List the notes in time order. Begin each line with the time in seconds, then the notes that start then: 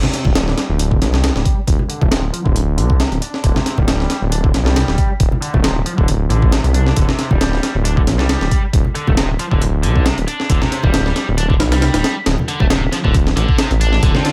0.03 C3, snare, low conga
0.14 snare, closed hi-hat
0.25 D1 G3, kick, high conga, low conga
0.35 snare, closed hi-hat
0.48 snare
0.58 snare, closed hi-hat
0.69 D1
0.79 D4, closed hi-hat
0.91 D3, kick
1.01 C2, snare, closed hi-hat
1.13 G3, snare
1.24 snare, closed hi-hat
1.35 D1, snare
1.45 kick, closed hi-hat
1.67 D1, kick, closed hi-hat
1.79 low conga
1.89 D3, closed hi-hat
2.01 D1 A3, kick, high conga, low conga
2.12 C3, snare, closed hi-hat
2.33 F3, closed hi-hat
2.45 D1 D3, kick
2.56 closed hi-hat
2.77 C2 D3, closed hi-hat
2.90 kick
2.99 C3, snare, closed hi-hat
3.11 D1, closed hi-hat
3.21 D4, closed hi-hat
3.34 snare
3.43 D1 D3, kick, closed hi-hat
3.55 C3, snare, low conga
3.66 snare, closed hi-hat
3.77 D1 G3, kick, high conga, low conga
3.88 snare, closed hi-hat
4.00 snare
4.10 snare, closed hi-hat
4.22 D1
4.31 D4, closed hi-hat
4.43 D3, kick
4.54 C2, snare, closed hi-hat
4.65 G3, snare
4.76 snare, closed hi-hat
4.88 D1, snare
4.98 kick, closed hi-hat
5.20 D1, kick, closed hi-hat
5.32 low conga
5.42 D3, closed hi-hat
5.54 D1 A3, kick, high conga, low conga
5.64 C3, snare, closed hi-hat
5.86 F3, closed hi-hat
5.98 D1 D3, kick
6.08 closed hi-hat
6.29 A1 D3, closed hi-hat
6.42 kick
6.52 C3, snare, closed hi-hat
6.64 C2, closed hi-hat
6.74 D4, closed hi-hat
6.87 snare
6.96 D1 D3, kick, closed hi-hat
7.08 C3, snare, low conga
7.19 snare, closed hi-hat
7.30 D1 G3, kick, high conga, low conga
7.41 snare, closed hi-hat
7.53 snare
7.63 snare, closed hi-hat
7.75 D1
7.85 D4, closed hi-hat
7.97 D3, kick
8.07 C2, snare, closed hi-hat
8.18 G3, snare
8.29 snare, closed hi-hat
8.41 D1, snare
8.51 kick, closed hi-hat
8.73 D1, kick, closed hi-hat
8.85 low conga
8.95 D3, closed hi-hat
9.07 D1 A3, kick, high conga, low conga
9.17 C3, snare, closed hi-hat
9.39 F3, closed hi-hat
9.51 D1 D3, kick
9.62 closed hi-hat
9.83 C2 D3, closed hi-hat
9.96 kick
10.05 C3, snare, closed hi-hat
10.17 D1, closed hi-hat
10.27 D4, closed hi-hat
10.40 snare
10.49 D1 D3, kick, closed hi-hat
10.61 C3, snare, low conga
10.72 snare, closed hi-hat
10.83 D1 G3, kick, high conga, low conga
10.94 snare, closed hi-hat
11.06 snare
11.16 snare, closed hi-hat
11.28 D1
11.38 D4, closed hi-hat
11.50 D3, kick
11.60 C2, snare, closed hi-hat
11.72 G3, snare, closed hi-hat
11.82 snare, closed hi-hat
11.94 D1, snare, closed hi-hat
12.04 snare, closed hi-hat
12.26 D1, snare, closed hi-hat
12.38 high conga, low conga
12.48 D3, closed hi-hat
12.60 D1 A3, kick, high conga, low conga
12.70 C3, snare, closed hi-hat
12.92 F3, snare, closed hi-hat
13.04 D1 D3, kick
13.14 kick, closed hi-hat
13.27 snare
13.36 A1 D3, closed hi-hat
13.49 kick
13.58 C3, snare, closed hi-hat
13.71 A1, closed hi-hat
13.80 D4, closed hi-hat
13.93 snare
14.02 D1 D3 D4 F4 A4, kick, closed hi-hat
14.14 C3, snare, low conga
14.25 snare, closed hi-hat